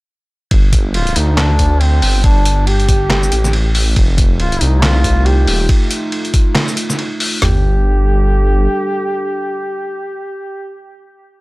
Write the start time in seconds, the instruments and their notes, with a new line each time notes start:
0.51 detuned saw bass G1, kick, ride
0.73 kick, closed hi-hat
0.94 duduk F4, ride
1.07 closed hi-hat
1.16 detuned saw bass D2, duduk D#4, closed hi-hat
1.38 duduk D4, snare, clap, ride
1.59 kick, closed hi-hat
1.81 duduk C4, ride
2.02 detuned saw bass G1, open hi-hat
2.24 duduk D4, kick, ride
2.45 closed hi-hat
2.67 duduk G4, ride
2.80 closed hi-hat
2.89 kick, closed hi-hat
3.10 snare, clap, ride
3.23 shaker
3.32 detuned saw bass A1, closed hi-hat
3.44 snare, shaker
3.53 ride
3.75 open hi-hat
3.96 detuned saw bass F1, analog synth pad A3 D#4 F4, kick, ride
4.18 kick, closed hi-hat
4.40 duduk F4, ride
4.52 closed hi-hat
4.61 detuned saw bass C2, duduk D#4, closed hi-hat
4.83 duduk F4, snare, clap, ride
5.04 kick, closed hi-hat
5.26 duduk G4, ride
5.47 detuned saw bass D#1, open hi-hat
5.69 kick, ride
5.91 closed hi-hat
6.12 ride
6.25 closed hi-hat
6.34 kick, closed hi-hat
6.55 snare, clap, ride
6.68 shaker
6.77 closed hi-hat
6.90 snare, shaker
6.99 ride
7.20 open hi-hat
7.42 detuned saw bass G1, analog synth pad G3 D4 A4, duduk G4, snare, floor tom